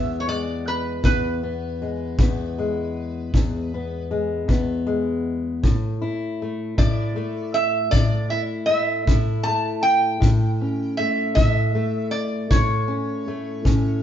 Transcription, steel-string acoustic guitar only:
Already playing: E2 G#3 B3
0.28 G#3
1.04 E2
1.43 B3
1.82 G#3
2.19 E2 B3
2.58 G#3
3.35 E2
3.74 B3
4.11 G#3
4.48 E2 B3
4.87 G#3
5.63 A2
6.02 E4
6.42 A3
6.78 A2 E4
7.16 A3
7.92 A2
8.31 E4
8.69 A3
9.08 A2 E4
9.47 A3
10.20 A2
10.61 C#4
10.99 A3
11.36 A2
11.75 A3
12.51 A2
12.88 C#4
13.28 A3
13.65 A2 C#4

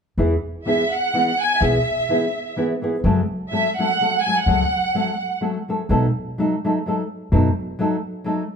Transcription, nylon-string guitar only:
0.18 E3 B3 E4 G#4
0.65 E3 B3 E4 G#4
1.14 E3 B3 E4 G#4
1.60 E3 B3 E4 G#4
2.09 E3 B3 E4 G#4
2.56 E3 B3 E4 G#4
2.82 E3 B3 E4 G#4
3.04 F#2 C#3 F#3 A3 C#4 A4
3.51 F#3 A3 C#4 A4
3.79 F#3 A3 C#4 A4
4.01 F#3 A3 C#4 A4
4.26 F#3 A3 C#4 A4
4.47 F#2 C#3 F#3 A3 C#4 A4
4.94 F#3 A3 C#4 A4
5.41 F#3 A3 C#4 A4
5.68 F#3 A3 C#4 A4
5.89 B2 F#3 A3 D#4 A4
6.38 F#3 A3 D#4 A4
6.64 F#3 A3 D#4 A4
6.86 F#3 A3 D#4 A4
7.32 B2 F#3 A3 D#4 A4
7.79 F#3 A3 D#4 A4
8.24 F#3 A3 D#4 A4

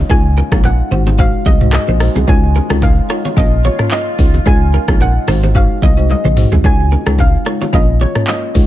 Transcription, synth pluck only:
0.11 G#5
0.65 F#5
1.20 F5
1.47 D#5
1.74 D#5
2.29 G#5
2.83 F5
3.38 D#5
3.65 C#5
3.92 D#5
4.47 G#5
5.02 F#5
5.56 F5
5.84 D#5
6.11 D#5
6.66 G#5
7.20 F5
7.74 D#5
8.01 C#5
8.29 D#5

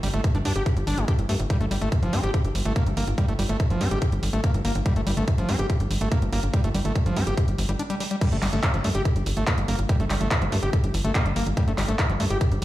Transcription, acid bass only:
0.03 G3
0.14 A3
0.35 D4
0.45 D4
0.56 G4
0.87 D4
0.98 G3
1.08 G4
1.29 A3
1.50 G3
1.61 A3
1.71 G3
1.81 A3
2.02 F3
2.13 D4
2.23 G4
2.65 A3
2.76 A#3
2.97 A#3
3.18 G3
3.28 A3
3.39 G3
3.49 A3
3.70 F3
3.81 D4
3.91 G4
4.33 A3
4.44 A#3
4.65 A#3
4.86 G3
4.96 A3
5.07 G3
5.17 A3
5.38 F3
5.49 D4
5.59 G4
6.01 A3
6.12 A#3
6.33 A#3
6.54 G3
6.64 A3
6.75 G3
6.85 A3
7.06 F3
7.17 D4
7.27 G4
7.69 G3
7.79 D4
7.90 G3
8.00 G3
8.11 G3
8.21 G3
8.32 A3
8.42 G3
8.53 A3
8.74 F3
8.84 A3
8.95 G4
9.37 A3
9.47 A#3
9.68 A#3
9.89 G3
10.00 A3
10.10 G3
10.21 A3
10.42 F3
10.52 A3
10.63 G4
11.05 A3
11.15 A#3
11.36 A#3
11.57 G3
11.68 A3
11.78 G3
11.88 A3
12.09 F3
12.20 A3
12.30 G4

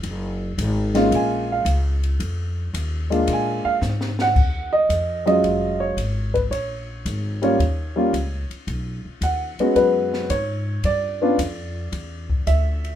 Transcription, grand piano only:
0.94 G#3 A#3 C#4 F4
1.15 G#5
1.52 F5
3.10 G#3 A#3 D4 F4
3.33 G#5
3.65 F5
4.21 F#5
4.73 D#5
5.26 F#3 G#3 C#4 F4 D#5
5.80 C#5
6.34 B4
6.51 C#5
7.42 G3 A#3 C#4 F4 C#5
7.96 G3 A#3 C#4 F4
9.23 F#5
9.60 G#3 B3 C#4 F#4
9.76 B4
10.30 C#5
10.85 D5
11.22 B3 C#4 D4 F4
12.47 E5

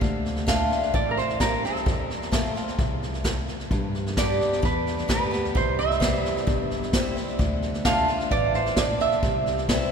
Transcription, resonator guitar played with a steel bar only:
0.49 F5
0.95 D5
1.11 A#4
1.17 C5
1.41 A#4
1.65 A4
4.18 D5
4.65 B4
5.11 B4
5.57 C5
5.79 E5
7.85 F5
8.31 D5
8.55 C5
8.78 D5
9.01 E5

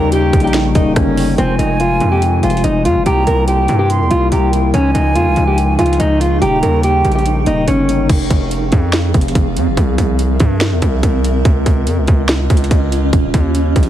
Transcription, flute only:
0.12 G5
1.38 G#5
2.43 G#5
3.06 A#5
3.48 G5
3.90 C6
4.31 A#5
4.53 G5
4.74 G#5
5.79 G#5
6.42 A#5
6.84 G5

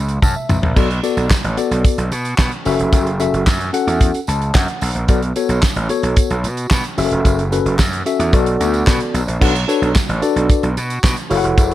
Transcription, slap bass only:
Already playing: C#2
0.22 F#2
0.49 B1
0.62 A#1
0.76 B1
1.17 B1
1.44 A1
1.71 B1
1.98 B1
2.12 B2
2.39 B2
2.66 F#1
2.79 F1
2.92 F#1
3.33 F#1
3.47 F#2
3.87 E2
4.28 C#2
4.55 F#2
4.82 B1
4.95 A#1
5.09 B1
5.49 B1
5.76 A1
6.03 B1
6.30 B1
6.44 B2
6.71 B2
6.98 F#1
7.12 F1
7.25 F#1
7.65 F#1
7.79 F#2
8.19 E2
8.33 B1
8.60 D2
8.87 B2
9.14 B1
9.28 A#1
9.41 B1
9.82 B1
10.09 A1
10.36 B1
10.63 B1
10.77 B2
11.04 B2
11.30 F#1
11.44 F1
11.58 F#1

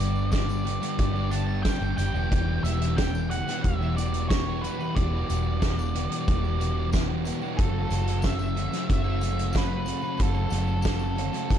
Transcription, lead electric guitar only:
Already playing: D5
0.32 D5
1.31 A5
1.63 G5
1.97 G5
2.63 E5
2.97 G5
3.30 F#5
3.63 E5
3.97 D5
4.29 C#5
4.61 B4
4.95 D5
7.57 A4
8.25 E5
8.92 E5
9.57 B4
10.22 A4

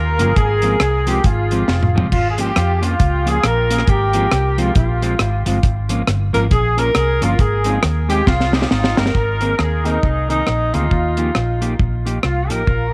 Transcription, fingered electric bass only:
Already playing: D#2
0.20 G1
0.37 G#1
0.81 C2
1.25 G#1
1.68 F1
2.12 G#1
2.57 F2
3.00 C#2
3.44 A#1
3.88 G#1
4.32 C2
4.76 A#1
5.20 G#1
5.46 G1
5.63 G#1
6.08 G1
6.34 G#1
6.52 A#1
6.96 C2
7.22 G1
7.39 G#1
7.84 D#2
8.27 C2
8.72 G#1
8.98 G1
9.15 G#1
9.59 D#2
10.04 C2
10.48 A#1
10.75 D2
10.92 D#2
11.36 A#1
11.80 A#1
12.24 C2
12.50 A1
12.68 A#1

